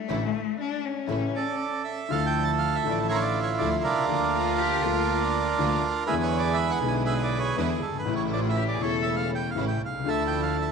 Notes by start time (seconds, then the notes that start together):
Already playing: A3
0.09 A1 A2 D3 E3 A3 D4 E4
0.61 D4
0.85 C#4
1.07 A1 A2 C#3 E3 A3 C#4 E4
1.35 A4 D5
1.84 E5
2.09 D2 D3 F3 A3 D4 E4 A4 F5
2.26 G5
2.44 A5
2.58 F5
2.75 E5
2.84 A1 A2 D3 F3 A3 D4 E5
2.88 D5 E5
3.09 E4 F4 A#4 C#5
3.15 C#5
3.21 D5
3.43 C#5
3.58 D2 D3 F3 A3 D4 E4 D5
3.84 C2 D4 F4 A#4
3.91 B1
3.96 C2
4.03 C#2
4.08 D2 D3 F3 A#3 D4 F4
4.34 F4
4.58 G4
4.81 D2 D3 F3 A#3 F4
4.85 A#3 D4 F4
5.59 D2 D3 F3 A#3 D4 F4
6.07 E2 D3 E3 G#3 B3 D4 E4 G#4 B4 E5
6.23 C#5
6.38 D5
6.53 E5
6.70 F#5
6.80 B1 B2 D3 G#3 B3 D4 E4
6.85 E4 G#5
7.05 G#4 B4 E5
7.23 D5
7.39 C#5
7.56 E2 D3 E3 G#3 B3 D4 E4 B4
7.82 G1 A4
7.88 F#1
7.94 G1
7.99 G#1 B4
8.04 A1 A2 C#3 E3 A3 C#4 E4
8.08 E4
8.16 C#5
8.31 F4 D5
8.49 E5
8.56 G4
8.68 D5
8.74 G#4
8.79 E1 E2 C#3 E3 A3 C#4 E4 A4 C#5
9.02 E5
9.16 F5
9.35 G5
9.51 F5
9.55 A1 A2 C#3 E3 A3 C#4 E4
9.68 G5
9.82 C2 F5
9.87 B1
9.94 C2
9.99 C#2
10.04 D2 D3 F3 A3 D4 E4 A4
10.09 E4 E5
10.27 G5
10.43 F5
10.61 E5